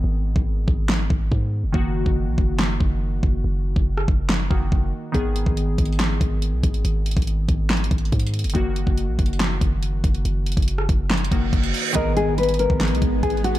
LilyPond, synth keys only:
\new Staff \with { instrumentName = "Synth keys" } { \time 4/4 \key gis \minor \tempo 4 = 141 <dis b gis'>1 | <dis ais fis'>1~ | <dis ais fis'>2~ <dis ais fis'>8 <dis ais fis'>4. | <dis b gis'>1~ |
<dis b gis'>1 | <dis ais fis'>1~ | <dis ais fis'>2~ <dis ais fis'>8 <dis ais fis'>4. | <dis b gis'>1 | }